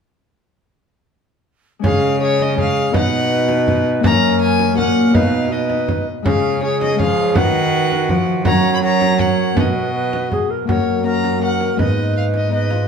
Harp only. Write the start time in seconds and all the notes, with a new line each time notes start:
1.79 G#3 C#4 C#5
1.83 C#3
2.54 G#3 C#4 C#5
2.91 B2 B3 F#4 D#5
4.00 A#3 F#4 C#5
4.04 F#2
4.73 A#2 A#3 F#4 C#5
5.10 B3 F#4 D#5
5.14 B2
5.48 B3 F#4 D#5
6.22 C#3 G#3 F4 C#5
6.95 F3 G#3 F4 C#5
7.34 D#3 D#4 B4
8.10 F3
8.44 F#3 C#4 A#4
8.80 C#4 A#4
9.17 C#4 A#4
9.54 B2 B3 B4
10.65 A#3 C#4 A#4
10.69 F#2
11.03 A#3 C#4 A#4
11.38 A#3 C#4 A#4
11.76 G#3 B3 B4
11.80 G#2
12.49 G#3 B3 B4